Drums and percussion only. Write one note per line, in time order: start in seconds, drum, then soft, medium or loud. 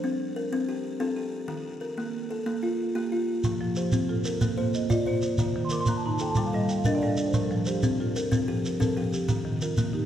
3.44 shekere medium
3.76 shekere medium
3.92 shekere medium
4.24 shekere medium
4.41 shekere medium
4.74 shekere medium
4.90 shekere medium
5.22 shekere medium
5.38 shekere medium
5.70 shekere medium
5.86 shekere medium
6.19 shekere medium
6.35 shekere medium
6.69 shekere soft
6.84 shekere medium
7.17 shekere soft
7.33 shekere medium
7.66 shekere soft
7.83 shekere medium
8.16 shekere medium
8.32 shekere medium
8.65 shekere soft
8.81 shekere medium
9.13 shekere soft
9.29 shekere medium
9.61 shekere soft
9.77 shekere medium